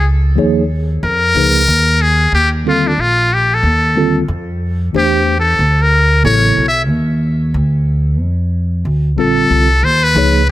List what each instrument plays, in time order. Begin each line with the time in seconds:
Already playing: upright bass C#2
0.36 upright bass D#2, tine electric piano F3 A#3 D#4 G#4 C#5
1.03 upright bass F2, muted trumpet A#4
1.35 upright bass C#2, tine electric piano F3 A#3 D#4 G#4 B4
1.68 upright bass D#2
2.02 muted trumpet G#4
2.32 upright bass D#2, muted trumpet G4
2.65 tine electric piano D3 G3 C4 F4 A4, muted trumpet F4
2.87 muted trumpet D4
2.98 upright bass A#1, muted trumpet F4
3.34 muted trumpet G4
3.54 muted trumpet A4
3.63 upright bass D#2
3.95 tine electric piano D3 G3 C4 F4 A4
4.28 upright bass F2
4.93 upright bass E2, tine electric piano E3 A3 D4 G4 C5
4.98 muted trumpet G4
5.40 muted trumpet A4
5.59 upright bass D2
5.82 muted trumpet A#4
6.23 upright bass A1, tine electric piano C#3 F#3 B3 E4 A4, muted trumpet C#5
6.57 upright bass B1
6.68 muted trumpet E5
6.89 upright bass D#2
7.54 upright bass D2
8.20 upright bass F2
8.85 upright bass D2
9.17 upright bass A#1, tine electric piano D3 G3 C4 F4 A4, muted trumpet A4
9.51 upright bass C2
9.83 upright bass D#2, muted trumpet C5
10.04 muted trumpet B4
10.14 upright bass C#2, tine electric piano F3 A#3 D#4 G#4 C#5